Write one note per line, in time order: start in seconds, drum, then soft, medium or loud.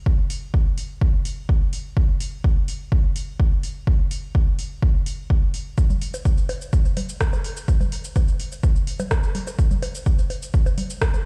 0.06 kick loud
0.30 open hi-hat medium
0.54 kick loud
0.78 open hi-hat medium
1.01 kick loud
1.25 open hi-hat medium
1.49 kick loud
1.73 open hi-hat medium
1.97 kick loud
2.20 open hi-hat medium
2.44 kick loud
2.68 open hi-hat medium
2.92 kick loud
3.16 open hi-hat medium
3.40 kick loud
3.63 open hi-hat medium
3.87 kick loud
4.11 open hi-hat medium
4.35 kick loud
4.59 open hi-hat medium
4.83 kick loud
5.06 open hi-hat medium
5.30 kick loud
5.54 open hi-hat medium
5.78 kick loud
5.78 cabasa soft
5.90 low conga medium
5.90 cabasa soft
6.02 open hi-hat medium
6.14 low bongo soft
6.14 cabasa medium
6.25 kick loud
6.25 cabasa soft
6.38 cabasa soft
6.49 open hi-hat medium
6.49 low bongo medium
6.62 cabasa medium
6.73 kick loud
6.73 cabasa soft
6.85 cabasa soft
6.97 open hi-hat medium
6.97 low bongo soft
6.97 low conga medium
7.09 cabasa medium
7.21 kick loud
7.21 cross-stick medium
7.21 cabasa soft
7.33 low bongo medium
7.33 cabasa soft
7.44 open hi-hat medium
7.57 cabasa medium
7.68 kick loud
7.68 cabasa soft
7.81 low bongo soft
7.81 low conga medium
7.81 cabasa soft
7.92 open hi-hat medium
8.04 cabasa medium
8.16 kick loud
8.16 low bongo medium
8.16 cabasa soft
8.28 cabasa soft
8.40 open hi-hat medium
8.52 cabasa medium
8.63 kick loud
8.63 low bongo soft
8.63 cabasa soft
8.76 cabasa soft
8.87 open hi-hat medium
9.00 low bongo medium
9.00 low conga medium
9.00 cabasa medium
9.11 kick loud
9.11 cross-stick medium
9.11 cabasa soft
9.23 cabasa soft
9.35 open hi-hat medium
9.35 low conga medium
9.47 low bongo soft
9.47 cabasa medium
9.59 kick loud
9.59 cabasa soft
9.71 low conga medium
9.71 cabasa soft
9.82 open hi-hat medium
9.82 low bongo medium
9.95 cabasa medium
10.06 kick loud
10.06 cabasa soft
10.19 cabasa soft
10.30 open hi-hat medium
10.30 low bongo soft
10.42 cabasa medium
10.54 kick loud
10.54 cabasa soft
10.66 low bongo medium
10.66 cabasa soft
10.78 open hi-hat medium
10.78 low conga medium
10.90 cabasa medium
11.02 kick loud
11.02 cross-stick loud
11.02 cabasa soft
11.14 low bongo soft
11.14 cabasa soft